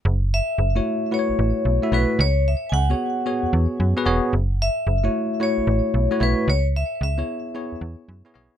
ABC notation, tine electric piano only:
X:1
M:4/4
L:1/16
Q:"Swing 16ths" 1/4=112
K:F#m
V:1 name="Tine electric piano"
z4 z [A,EFc]3 [A,EFBc]4 z [A,EFe] [A,EFB]2 | z4 z [B,FGc]3 [B,FGc]4 z [B,FGB] [B,FGc]2 | z4 z [A,EFc]3 [A,EFc]4 z [A,EFc] [A,EFc]2 | z4 z [B,EGc]3 [B,EGc]4 z [B,EGc] [B,EGc]2 |]